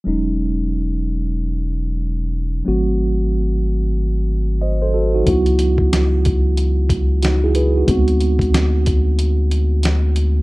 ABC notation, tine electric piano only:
X:1
M:4/4
L:1/16
Q:"Swing 16ths" 1/4=92
K:E
V:1 name="Tine electric piano"
z16 | z12 [^Bd] [AB] [FA] [DF]- | [DF] z8 z3 [DF] [EG] [GB] [DF]- | [DF] z12 z3 |]
V:2 name="Tine electric piano"
[F,G,CD]16 | [F,A,^B,F]16 | [F,B,EF]12 z4 | [G,B,=CF]16 |]